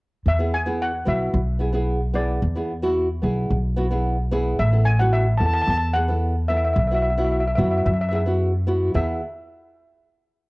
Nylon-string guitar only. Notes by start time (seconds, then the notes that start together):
0.38 B3 E4 G#4
0.66 B3 E4 G#4
1.05 B3 E4 F#4
1.59 B3 E4 G#4
1.73 B3 E4 G#4
2.14 B3 E4 G#4
2.56 B3 E4 G#4
2.83 B3 E4 F#4
3.22 B3 E4 G#4
3.77 B3 E4 F#4
3.91 B3 E4 G#4
4.31 B3 E4 G#4
4.72 B3 E4 A4
5.00 B3 E4 F#4
5.39 B3 E4 A4
5.94 B3 E4 G#4
6.08 B3 E4 A4
6.50 B3 E4 A4
6.91 B3 E4 F#4
7.17 B3 E4 F#4
7.57 B3 E4 F#4
8.11 B3 E4 G#4
8.26 B3 E4 F#4
8.67 B3 E4 F#4
8.94 B3 E4 G#4